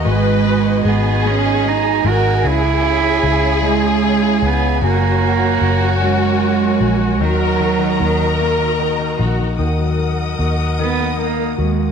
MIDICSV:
0, 0, Header, 1, 6, 480
1, 0, Start_track
1, 0, Tempo, 794702
1, 34, Time_signature, 6, 3, 24, 8
1, 7198, End_track
2, 0, Start_track
2, 0, Title_t, "String section"
2, 0, Program_c, 0, 48
2, 0, Note_on_c, 0, 66, 81
2, 0, Note_on_c, 0, 75, 75
2, 31, Note_on_c, 0, 80, 86
2, 36, Note_on_c, 0, 59, 74
2, 1446, Note_off_c, 0, 66, 0
2, 1451, Note_off_c, 0, 75, 0
2, 1460, Note_off_c, 0, 59, 0
2, 1472, Note_on_c, 0, 64, 80
2, 1473, Note_on_c, 0, 68, 72
2, 1474, Note_on_c, 0, 73, 76
2, 2898, Note_off_c, 0, 64, 0
2, 2899, Note_off_c, 0, 68, 0
2, 2899, Note_off_c, 0, 73, 0
2, 2914, Note_on_c, 0, 66, 88
2, 2914, Note_on_c, 0, 70, 78
2, 2914, Note_on_c, 0, 73, 77
2, 4327, Note_off_c, 0, 80, 0
2, 4339, Note_off_c, 0, 70, 0
2, 4339, Note_off_c, 0, 73, 0
2, 4354, Note_on_c, 0, 82, 92
2, 4357, Note_on_c, 0, 75, 74
2, 4359, Note_on_c, 0, 70, 73
2, 5770, Note_off_c, 0, 66, 0
2, 5780, Note_off_c, 0, 82, 0
2, 5782, Note_off_c, 0, 75, 0
2, 5783, Note_off_c, 0, 70, 0
2, 5789, Note_on_c, 0, 70, 72
2, 5789, Note_on_c, 0, 87, 74
2, 5790, Note_on_c, 0, 75, 62
2, 5790, Note_on_c, 0, 78, 63
2, 7198, Note_off_c, 0, 70, 0
2, 7198, Note_off_c, 0, 75, 0
2, 7198, Note_off_c, 0, 78, 0
2, 7198, Note_off_c, 0, 87, 0
2, 7198, End_track
3, 0, Start_track
3, 0, Title_t, "Violin section"
3, 0, Program_c, 1, 48
3, 34, Note_on_c, 1, 71, 118
3, 490, Note_off_c, 1, 71, 0
3, 516, Note_on_c, 1, 68, 105
3, 1211, Note_off_c, 1, 68, 0
3, 1232, Note_on_c, 1, 70, 103
3, 1463, Note_on_c, 1, 68, 117
3, 1473, Note_off_c, 1, 70, 0
3, 2908, Note_off_c, 1, 68, 0
3, 2910, Note_on_c, 1, 66, 109
3, 4351, Note_off_c, 1, 66, 0
3, 4354, Note_on_c, 1, 70, 101
3, 4810, Note_off_c, 1, 70, 0
3, 4832, Note_on_c, 1, 70, 100
3, 5529, Note_off_c, 1, 70, 0
3, 5561, Note_on_c, 1, 66, 75
3, 5798, Note_off_c, 1, 66, 0
3, 7198, End_track
4, 0, Start_track
4, 0, Title_t, "Cello"
4, 0, Program_c, 2, 42
4, 53, Note_on_c, 2, 56, 102
4, 533, Note_on_c, 2, 59, 92
4, 542, Note_off_c, 2, 56, 0
4, 767, Note_on_c, 2, 61, 96
4, 776, Note_off_c, 2, 59, 0
4, 1014, Note_on_c, 2, 63, 96
4, 1024, Note_off_c, 2, 61, 0
4, 1252, Note_on_c, 2, 66, 97
4, 1261, Note_off_c, 2, 63, 0
4, 1487, Note_on_c, 2, 64, 116
4, 1496, Note_off_c, 2, 66, 0
4, 2209, Note_on_c, 2, 56, 100
4, 2218, Note_off_c, 2, 64, 0
4, 2693, Note_on_c, 2, 59, 90
4, 2702, Note_off_c, 2, 56, 0
4, 2923, Note_off_c, 2, 59, 0
4, 2929, Note_on_c, 2, 58, 106
4, 3617, Note_off_c, 2, 58, 0
4, 3640, Note_on_c, 2, 56, 94
4, 4359, Note_on_c, 2, 54, 98
4, 4368, Note_off_c, 2, 56, 0
4, 5317, Note_off_c, 2, 54, 0
4, 6524, Note_on_c, 2, 59, 91
4, 6743, Note_off_c, 2, 59, 0
4, 6761, Note_on_c, 2, 58, 80
4, 6982, Note_off_c, 2, 58, 0
4, 6999, Note_on_c, 2, 56, 73
4, 7198, Note_off_c, 2, 56, 0
4, 7198, End_track
5, 0, Start_track
5, 0, Title_t, "Upright piano"
5, 0, Program_c, 3, 0
5, 0, Control_c, 3, 64, 127
5, 28, Note_on_c, 3, 56, 68
5, 43, Control_c, 3, 64, 0
5, 155, Note_on_c, 3, 63, 54
5, 161, Control_c, 3, 64, 127
5, 264, Note_off_c, 3, 56, 0
5, 274, Note_on_c, 3, 56, 54
5, 381, Note_off_c, 3, 63, 0
5, 390, Note_on_c, 3, 63, 56
5, 508, Note_off_c, 3, 56, 0
5, 517, Note_on_c, 3, 56, 55
5, 624, Note_off_c, 3, 63, 0
5, 633, Note_on_c, 3, 63, 55
5, 746, Note_off_c, 3, 56, 0
5, 755, Note_on_c, 3, 56, 68
5, 867, Note_off_c, 3, 63, 0
5, 876, Note_on_c, 3, 63, 55
5, 983, Note_off_c, 3, 56, 0
5, 992, Note_on_c, 3, 56, 56
5, 1102, Note_off_c, 3, 63, 0
5, 1111, Note_on_c, 3, 63, 57
5, 1227, Note_off_c, 3, 56, 0
5, 1236, Note_on_c, 3, 56, 58
5, 1346, Note_off_c, 3, 63, 0
5, 1355, Note_on_c, 3, 63, 51
5, 1468, Note_off_c, 3, 56, 0
5, 1471, Note_off_c, 3, 63, 0
5, 1472, Note_on_c, 3, 49, 68
5, 1481, Control_c, 3, 64, 0
5, 1582, Note_off_c, 3, 49, 0
5, 1595, Control_c, 3, 64, 127
5, 1703, Note_on_c, 3, 49, 58
5, 1813, Note_off_c, 3, 49, 0
5, 1822, Note_on_c, 3, 49, 58
5, 1939, Note_off_c, 3, 49, 0
5, 1948, Note_on_c, 3, 49, 58
5, 2059, Note_off_c, 3, 49, 0
5, 2068, Note_on_c, 3, 49, 56
5, 2188, Note_on_c, 3, 56, 69
5, 2298, Note_off_c, 3, 49, 0
5, 2307, Note_on_c, 3, 49, 53
5, 2420, Note_off_c, 3, 49, 0
5, 2429, Note_on_c, 3, 49, 58
5, 2536, Note_off_c, 3, 49, 0
5, 2545, Note_on_c, 3, 49, 58
5, 2653, Note_off_c, 3, 49, 0
5, 2662, Note_on_c, 3, 49, 59
5, 2779, Note_off_c, 3, 49, 0
5, 2788, Note_on_c, 3, 49, 54
5, 2889, Note_off_c, 3, 56, 0
5, 2907, Note_off_c, 3, 49, 0
5, 2909, Note_on_c, 3, 54, 67
5, 2921, Control_c, 3, 64, 0
5, 3021, Note_off_c, 3, 54, 0
5, 3030, Control_c, 3, 64, 127
5, 3030, Note_on_c, 3, 54, 53
5, 3137, Note_off_c, 3, 54, 0
5, 3146, Note_on_c, 3, 54, 57
5, 3252, Note_off_c, 3, 54, 0
5, 3261, Note_on_c, 3, 54, 61
5, 3374, Note_off_c, 3, 54, 0
5, 3384, Note_on_c, 3, 54, 57
5, 3499, Note_off_c, 3, 54, 0
5, 3508, Note_on_c, 3, 54, 54
5, 3632, Note_on_c, 3, 61, 69
5, 3745, Note_off_c, 3, 54, 0
5, 3754, Note_on_c, 3, 54, 55
5, 3858, Note_off_c, 3, 54, 0
5, 3868, Note_on_c, 3, 54, 55
5, 3987, Note_off_c, 3, 54, 0
5, 3996, Note_on_c, 3, 54, 56
5, 4101, Note_off_c, 3, 54, 0
5, 4110, Note_on_c, 3, 54, 56
5, 4218, Note_off_c, 3, 54, 0
5, 4227, Note_on_c, 3, 54, 49
5, 4331, Note_off_c, 3, 61, 0
5, 4347, Note_off_c, 3, 54, 0
5, 4352, Note_on_c, 3, 51, 71
5, 4361, Control_c, 3, 64, 0
5, 4452, Control_c, 3, 64, 127
5, 4456, Note_off_c, 3, 51, 0
5, 4465, Note_on_c, 3, 51, 51
5, 4578, Note_off_c, 3, 51, 0
5, 4587, Note_on_c, 3, 51, 54
5, 4691, Note_off_c, 3, 51, 0
5, 4701, Note_on_c, 3, 51, 60
5, 4819, Note_off_c, 3, 51, 0
5, 4828, Note_on_c, 3, 51, 56
5, 4936, Note_off_c, 3, 51, 0
5, 4946, Note_on_c, 3, 51, 55
5, 5068, Note_on_c, 3, 58, 69
5, 5179, Note_off_c, 3, 51, 0
5, 5188, Note_on_c, 3, 51, 52
5, 5300, Note_off_c, 3, 51, 0
5, 5309, Note_on_c, 3, 51, 56
5, 5417, Note_off_c, 3, 51, 0
5, 5426, Note_on_c, 3, 51, 53
5, 5539, Note_off_c, 3, 51, 0
5, 5548, Note_on_c, 3, 51, 54
5, 5661, Note_off_c, 3, 51, 0
5, 5670, Note_on_c, 3, 51, 49
5, 5770, Note_off_c, 3, 58, 0
5, 5782, Note_off_c, 3, 51, 0
5, 5791, Note_on_c, 3, 51, 57
5, 5803, Control_c, 3, 64, 0
5, 5904, Control_c, 3, 64, 127
5, 5912, Note_on_c, 3, 54, 44
5, 6034, Note_on_c, 3, 70, 47
5, 6271, Note_on_c, 3, 66, 47
5, 6506, Note_off_c, 3, 51, 0
5, 6516, Note_on_c, 3, 51, 59
5, 6637, Note_on_c, 3, 58, 45
5, 6745, Note_off_c, 3, 70, 0
5, 6754, Note_on_c, 3, 70, 47
5, 6850, Note_off_c, 3, 54, 0
5, 6862, Note_off_c, 3, 58, 0
5, 6871, Note_on_c, 3, 58, 42
5, 6984, Note_off_c, 3, 66, 0
5, 6993, Note_on_c, 3, 66, 45
5, 7102, Note_off_c, 3, 58, 0
5, 7111, Note_on_c, 3, 58, 39
5, 7198, Note_off_c, 3, 51, 0
5, 7198, Note_off_c, 3, 58, 0
5, 7198, Note_off_c, 3, 66, 0
5, 7198, Note_off_c, 3, 70, 0
5, 7198, End_track
6, 0, Start_track
6, 0, Title_t, "Fingered electric bass"
6, 0, Program_c, 4, 33
6, 34, Note_on_c, 4, 32, 99
6, 490, Note_off_c, 4, 32, 0
6, 512, Note_on_c, 4, 32, 92
6, 1209, Note_off_c, 4, 32, 0
6, 1233, Note_on_c, 4, 32, 92
6, 1459, Note_off_c, 4, 32, 0
6, 1473, Note_on_c, 4, 37, 102
6, 1929, Note_off_c, 4, 37, 0
6, 1952, Note_on_c, 4, 37, 95
6, 2648, Note_off_c, 4, 37, 0
6, 2672, Note_on_c, 4, 37, 103
6, 2898, Note_off_c, 4, 37, 0
6, 2910, Note_on_c, 4, 30, 111
6, 3368, Note_off_c, 4, 30, 0
6, 3390, Note_on_c, 4, 30, 92
6, 4088, Note_off_c, 4, 30, 0
6, 4110, Note_on_c, 4, 34, 85
6, 4353, Note_off_c, 4, 34, 0
6, 4353, Note_on_c, 4, 39, 101
6, 4809, Note_off_c, 4, 39, 0
6, 4833, Note_on_c, 4, 39, 96
6, 5530, Note_off_c, 4, 39, 0
6, 5552, Note_on_c, 4, 34, 82
6, 5779, Note_off_c, 4, 34, 0
6, 5791, Note_on_c, 4, 39, 87
6, 6249, Note_off_c, 4, 39, 0
6, 6275, Note_on_c, 4, 39, 80
6, 6972, Note_off_c, 4, 39, 0
6, 6997, Note_on_c, 4, 39, 72
6, 7198, Note_off_c, 4, 39, 0
6, 7198, End_track
0, 0, End_of_file